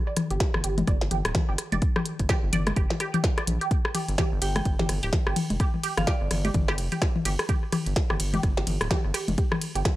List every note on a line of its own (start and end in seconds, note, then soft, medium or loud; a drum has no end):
0.07 0.11 D5 medium
0.17 cross-stick soft
0.17 closed hi-hat loud
0.17 high tom medium
0.31 0.38 G1 loud
0.31 0.34 G4 medium
0.31 closed hi-hat soft
0.40 kick loud
0.40 snare loud
0.40 closed hi-hat medium
0.54 0.62 G1 loud
0.54 cross-stick medium
0.54 high tom soft
0.64 0.83 G1 medium
0.64 0.72 G4 medium
0.64 closed hi-hat loud
0.78 closed hi-hat soft
0.78 high tom medium
0.78 low conga loud
0.87 0.98 G1 loud
0.87 0.93 D5 medium
0.87 kick loud
0.87 cross-stick soft
0.87 closed hi-hat medium
1.01 1.09 G1 medium
1.01 snare medium
1.11 1.22 G1 loud
1.11 1.17 G4 medium
1.11 closed hi-hat medium
1.11 high tom soft
1.25 1.33 D1 loud
1.25 cross-stick medium
1.25 closed hi-hat soft
1.35 kick loud
1.35 snare loud
1.35 closed hi-hat medium
1.35 high tom medium
1.49 1.56 G1 medium
1.49 1.54 G4 medium
1.58 cross-stick soft
1.58 closed hi-hat loud
1.72 1.80 F1 medium
1.72 1.76 D5 medium
1.72 closed hi-hat soft
1.72 high tom soft
1.72 low conga medium
1.82 kick loud
1.82 closed hi-hat soft
1.96 2.00 G4 medium
1.96 cross-stick medium
1.96 high tom medium
2.06 closed hi-hat loud
2.19 2.27 G1 loud
2.19 kick medium
2.19 closed hi-hat soft
2.29 2.37 G4 medium
2.29 kick loud
2.29 cross-stick soft
2.29 snare medium
2.29 closed hi-hat medium
2.29 high tom soft
2.43 2.51 G1 loud
2.53 2.72 G1 loud
2.53 2.58 D5 medium
2.53 closed hi-hat loud
2.53 high tom medium
2.67 cross-stick medium
2.67 closed hi-hat soft
2.67 low conga medium
2.76 2.87 G1 medium
2.76 2.82 G4 medium
2.76 kick loud
2.76 closed hi-hat medium
2.90 snare medium
2.90 high tom soft
3.00 3.06 G4 loud
3.00 cross-stick soft
3.00 closed hi-hat medium
3.14 3.16 G4 medium
3.14 closed hi-hat soft
3.14 high tom medium
3.24 kick loud
3.24 snare medium
3.24 closed hi-hat medium
3.38 3.42 D5 medium
3.38 cross-stick medium
3.38 closed hi-hat soft
3.47 3.58 A#1 medium
3.47 closed hi-hat loud
3.47 high tom soft
3.61 3.65 G4 medium
3.61 closed hi-hat soft
3.71 kick loud
3.71 closed hi-hat medium
3.85 cross-stick medium
3.95 4.03 G4 medium
3.95 closed hi-hat medium
3.95 high tom soft
3.95 ride medium
4.09 4.16 G1 loud
4.09 closed hi-hat soft
4.18 4.24 G4 loud
4.18 kick loud
4.18 cross-stick soft
4.18 snare medium
4.18 closed hi-hat medium
4.18 high tom medium
4.32 4.40 G1 loud
4.42 4.61 G1 loud
4.42 4.47 G4 medium
4.42 4.51 G5 medium
4.42 closed hi-hat medium
4.42 ride medium
4.56 4.62 G5 medium
4.56 cross-stick medium
4.56 closed hi-hat soft
4.56 high tom soft
4.56 low conga medium
4.65 4.76 G1 loud
4.65 kick loud
4.65 closed hi-hat medium
4.79 4.87 G1 medium
4.79 4.85 G4 medium
4.79 snare medium
4.79 high tom medium
4.89 5.00 G1 loud
4.89 cross-stick soft
4.89 closed hi-hat medium
4.89 ride medium
5.03 5.11 D1 loud
5.03 5.07 G4 loud
5.03 closed hi-hat soft
5.13 kick loud
5.13 snare medium
5.13 closed hi-hat medium
5.13 high tom soft
5.27 5.34 G1 loud
5.27 5.30 G4 medium
5.27 cross-stick medium
5.36 closed hi-hat loud
5.36 high tom medium
5.36 ride medium
5.50 5.58 F1 medium
5.50 closed hi-hat soft
5.50 low conga medium
5.60 5.68 G4 medium
5.60 kick loud
5.60 cross-stick soft
5.60 closed hi-hat soft
5.74 high tom soft
5.84 5.89 G4 loud
5.84 closed hi-hat medium
5.84 ride medium
5.97 6.05 G1 loud
5.97 6.05 F5 medium
5.97 cross-stick medium
5.97 closed hi-hat soft
5.97 high tom medium
6.07 6.13 G4 medium
6.07 6.45 D5 medium
6.07 kick loud
6.07 snare medium
6.07 closed hi-hat medium
6.21 6.29 G1 loud
6.31 6.50 G1 loud
6.31 cross-stick soft
6.31 closed hi-hat medium
6.31 high tom soft
6.31 ride medium
6.45 6.50 G4 medium
6.45 closed hi-hat soft
6.45 low conga medium
6.54 6.80 G1 loud
6.54 kick loud
6.54 closed hi-hat medium
6.54 high tom medium
6.68 6.72 G4 loud
6.68 cross-stick medium
6.68 snare medium
6.78 6.89 F1 loud
6.78 closed hi-hat medium
6.78 ride medium
6.92 6.96 G4 medium
6.92 closed hi-hat soft
6.92 high tom soft
7.02 kick loud
7.02 cross-stick soft
7.02 snare medium
7.02 closed hi-hat medium
7.16 high tom medium
7.25 7.36 G1 loud
7.25 7.34 G4 medium
7.25 closed hi-hat loud
7.25 ride medium
7.39 cross-stick medium
7.39 closed hi-hat soft
7.49 7.54 G4 loud
7.49 kick loud
7.49 closed hi-hat medium
7.49 high tom soft
7.72 7.78 G4 medium
7.72 cross-stick soft
7.72 closed hi-hat medium
7.72 high tom medium
7.72 ride medium
7.86 7.94 G1 loud
7.86 closed hi-hat soft
7.96 kick loud
7.96 snare medium
7.96 closed hi-hat medium
8.10 8.18 G1 loud
8.10 8.16 G4 medium
8.10 cross-stick medium
8.10 high tom soft
8.20 8.39 G1 medium
8.20 closed hi-hat medium
8.20 ride medium
8.34 8.38 G4 loud
8.34 closed hi-hat soft
8.34 high tom medium
8.34 low conga medium
8.43 8.54 G1 loud
8.43 kick loud
8.43 cross-stick soft
8.43 closed hi-hat medium
8.57 8.65 G1 medium
8.57 8.61 G4 medium
8.57 snare medium
8.67 8.78 G1 loud
8.67 closed hi-hat medium
8.67 high tom soft
8.67 ride medium
8.81 8.88 D1 loud
8.81 cross-stick medium
8.81 closed hi-hat soft
8.90 8.99 G4 medium
8.90 kick loud
8.90 snare loud
8.90 closed hi-hat medium
8.90 high tom medium
9.05 9.12 G1 medium
9.14 9.20 G4 loud
9.14 cross-stick soft
9.14 closed hi-hat loud
9.14 ride loud
9.28 9.36 F1 medium
9.28 closed hi-hat soft
9.28 high tom soft
9.28 low conga medium
9.38 9.43 G4 medium
9.38 kick loud
9.38 closed hi-hat medium
9.52 cross-stick medium
9.52 high tom medium
9.62 closed hi-hat medium
9.62 ride medium
9.75 9.83 G1 loud
9.75 9.81 G4 medium
9.75 closed hi-hat soft
9.85 kick loud
9.85 cross-stick soft
9.85 snare loud
9.85 closed hi-hat medium
9.85 high tom soft